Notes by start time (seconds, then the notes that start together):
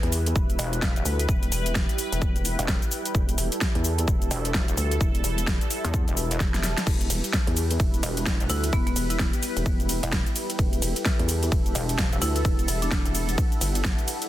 Already playing: G3 E4 G4 B4 E5
0.03 E2, closed hi-hat
0.12 open hi-hat, shaker
0.26 closed hi-hat, shaker
0.31 G5
0.36 E1, kick, shaker
0.50 closed hi-hat, shaker
0.59 E1, open hi-hat, shaker
0.73 closed hi-hat, shaker
0.82 kick, snare, shaker
0.96 E1, closed hi-hat, shaker
1.05 D2, open hi-hat, shaker
1.19 closed hi-hat, shaker
1.29 E1, kick, shaker
1.43 closed hi-hat, shaker
1.52 E1, open hi-hat, shaker
1.66 closed hi-hat, shaker
1.75 kick, snare, shaker
1.89 closed hi-hat, shaker
1.98 open hi-hat, shaker
2.12 E1, closed hi-hat, shaker
2.22 kick, shaker
2.36 closed hi-hat, shaker
2.45 open hi-hat, shaker
2.59 E1, closed hi-hat, shaker
2.68 kick, snare, shaker
2.82 closed hi-hat, shaker
2.91 open hi-hat, shaker
3.05 closed hi-hat, shaker
3.15 E1 A4, kick, shaker
3.29 closed hi-hat, shaker
3.38 E1, open hi-hat, shaker
3.52 closed hi-hat, shaker
3.61 kick, snare, shaker
3.75 E2, closed hi-hat
3.84 open hi-hat, shaker
3.98 closed hi-hat, shaker
4.03 A5
4.08 E1, kick, shaker
4.22 closed hi-hat, shaker
4.31 E1, open hi-hat, shaker
4.45 closed hi-hat, shaker
4.54 kick, snare, shaker
4.68 E1, closed hi-hat, shaker
4.77 D2, open hi-hat, shaker
4.91 closed hi-hat, shaker
5.01 E1, kick, shaker
5.15 closed hi-hat, shaker
5.24 E1, open hi-hat, shaker
5.38 closed hi-hat, shaker
5.47 kick, snare, shaker
5.61 closed hi-hat, shaker
5.71 open hi-hat, shaker
5.84 E2, closed hi-hat, shaker
5.94 kick, shaker
6.08 E1, closed hi-hat, shaker
6.17 open hi-hat, shaker
6.31 closed hi-hat, shaker
6.40 E1, kick, snare, shaker
6.54 snare, closed hi-hat, shaker
6.64 snare, open hi-hat, shaker
6.78 snare, closed hi-hat, shaker
6.87 E1 B4, kick, crash, ride, shaker
7.01 closed hi-hat, shaker
7.10 E1, open hi-hat, ride, shaker
7.24 closed hi-hat, shaker
7.33 kick, snare, ride, shaker
7.47 E2, closed hi-hat
7.57 open hi-hat, ride, shaker
7.71 closed hi-hat, shaker
7.75 G5
7.80 E1, kick, ride, shaker
7.94 closed hi-hat, shaker
8.03 E1, open hi-hat, ride, shaker
8.17 closed hi-hat, shaker
8.26 kick, snare, ride, shaker
8.40 E1, closed hi-hat, shaker
8.50 D2 E4, open hi-hat, ride, shaker
8.64 closed hi-hat, shaker
8.73 E1 B3, kick, ride, shaker
8.87 B3, closed hi-hat, shaker
8.96 E1, open hi-hat, ride, shaker
9.10 E4, closed hi-hat, shaker
9.19 kick, snare, ride, shaker
9.33 closed hi-hat, shaker
9.43 open hi-hat, ride, shaker
9.57 E1, closed hi-hat, shaker
9.66 kick, ride, shaker
9.80 closed hi-hat, shaker
9.89 open hi-hat, ride, shaker
10.03 E1, closed hi-hat, shaker
10.12 kick, snare, ride, shaker
10.26 closed hi-hat, shaker
10.36 open hi-hat, ride, shaker
10.50 closed hi-hat, shaker
10.59 E1 A4, kick, ride, shaker
10.73 closed hi-hat, shaker
10.82 E1, open hi-hat, ride, shaker
10.96 closed hi-hat, shaker
11.05 kick, snare, ride, shaker
11.19 E2, closed hi-hat
11.29 open hi-hat, ride, shaker
11.43 closed hi-hat, shaker
11.47 F#5
11.52 E1, kick, ride, shaker
11.66 closed hi-hat, shaker
11.75 E1, open hi-hat, ride, shaker
11.89 closed hi-hat, shaker
11.98 kick, snare, ride, shaker
12.12 E1, closed hi-hat, shaker
12.22 D2 E4, open hi-hat, ride, shaker
12.36 closed hi-hat, shaker
12.45 E1, kick, ride, shaker
12.59 closed hi-hat, shaker
12.68 E1, open hi-hat, ride, shaker
12.82 D4, closed hi-hat, shaker
12.91 kick, snare, ride, shaker
13.05 E1, closed hi-hat, shaker
13.15 open hi-hat, ride, shaker
13.29 closed hi-hat, shaker
13.38 kick, ride, shaker
13.52 closed hi-hat, shaker
13.61 G1, open hi-hat, ride, shaker
13.75 closed hi-hat, shaker
13.84 kick, snare, ride, shaker
13.98 closed hi-hat, shaker
14.08 open hi-hat, ride, shaker
14.22 closed hi-hat, shaker